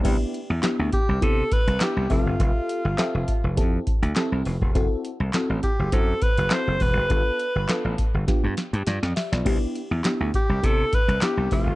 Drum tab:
CC |x---------------|----------------|----------------|----------------|
HH |x-x-x-x-x-xxx-o-|x-x-x-x-x-xxx-o-|x-x-x-x-x-xxx-o-|x-x-x-x-x-xxx-o-|
CP |----x-------x---|----x-------x---|----x-------x---|----x-----------|
SD |----o-------o---|----o-------o---|----o-------o---|----o---o-o-oooo|
BD |o-----o-o-o---o-|o-----o-o-o----o|o-----o-o-o---o-|o-----o-o-------|

CC |x---------------|
HH |--x-x-x-x-xxx-o-|
CP |----x-------x---|
SD |----o-------o---|
BD |o-----o-o-o---o-|